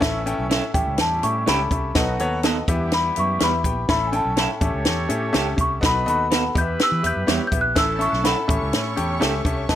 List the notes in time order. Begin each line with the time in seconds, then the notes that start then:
0.00 A1 A2 E3 A3 C#4 E4 A4 E5, kick, snare, closed hi-hat
0.26 C#4 E4 A4 G5, closed hi-hat
0.38 B1
0.49 C#4 E4 A4 E5, snare, closed hi-hat
0.74 A1 A2 G3 C#4 E4 G4 A4 E5 G5, kick, closed hi-hat
0.87 C#2
0.98 E2 A5, snare, closed hi-hat
1.23 A2 C#4 G4 A4 E5 C#6, closed hi-hat
1.46 C#2 C#4 G4 A4 E5 B5, snare, closed hi-hat
1.71 C2 C#4 G4 A4 E5, kick, closed hi-hat
1.95 B1 B2 F#3 B3 D#4 F#4 A4 D#5, kick, snare, closed hi-hat
2.19 D#2 B3 F#4 A4 C#5, closed hi-hat
2.43 B3 D#4 F#4 A4 D#5, snare, closed hi-hat
2.68 E2 E3 G3 B3 E4 G4 E5, kick, closed hi-hat
2.92 B5, snare, closed hi-hat
3.16 F#2 B3 E4 G4 E5 C#6, closed hi-hat
3.39 E2 G3 B3 E4 G4 E5, snare, closed hi-hat
3.44 B5
3.64 A#1 B3 E4 G4 G5, kick, closed hi-hat
3.88 A1 A2 A3 C#4 E4 A4 E5 B5, kick, snare, closed hi-hat
4.07 G#5
4.12 C#4 E4 A4 G5 A5, closed hi-hat
4.25 B1
4.36 C#4 E4 A4 G5, snare, closed hi-hat
4.60 A1 A2 C#4 G4 A4 C#5 E5, kick, closed hi-hat
4.74 C#2
4.85 E2, snare, closed hi-hat
5.09 A2 C#4 G4 A4 E5, closed hi-hat
5.33 C#2 C#4 G4 A4 E5, snare, closed hi-hat
5.57 C2 C#4 G4 A4 E5, kick, closed hi-hat
5.61 C#6
5.81 B1 B2 B3 D#4 F#4 A4 B4 D#5, kick, snare, closed hi-hat
5.86 B5
6.06 D#2 B3 F#4 A4 D#5 B5, closed hi-hat
6.31 B3 D#4 F#4 A4 F#5, snare, closed hi-hat
6.55 E2 E3 B3 E4 G4 B4 D#5 G6, kick, closed hi-hat
6.61 E5
6.79 E6, snare, closed hi-hat
6.92 E3
7.03 E2 B3 E4 G4 E5 G6, closed hi-hat
7.16 F#2
7.27 E2 G3 B3 E4 G4 C#5, snare, closed hi-hat
7.47 G6
7.52 A#1 B3 E4 G4 E5, kick, closed hi-hat
7.61 F#6
7.75 A1 A2 A3 C#4 E4 A4 E5 A5 E6, kick, snare, closed hi-hat
7.98 C#4 E4 A4 E5 C#6, closed hi-hat
8.13 B1, snare
8.23 C#4 E4 A4 F#5 B5, snare, closed hi-hat
8.48 A1 A2 A3 C#4 E4 G4 A4 C#5 E5 C#6, kick, closed hi-hat
8.62 C#2
8.73 A2, snare, closed hi-hat
8.96 E2 C#4 G4 A4 G5, closed hi-hat
9.20 C#2 C#4 G4 A4 E5, snare, closed hi-hat
9.45 C2 C#4 G4 A4 E5, kick, closed hi-hat
9.68 B1 B2 B3 D#4 F#4 A4 B4 D#5 A5 D#6, kick, snare, closed hi-hat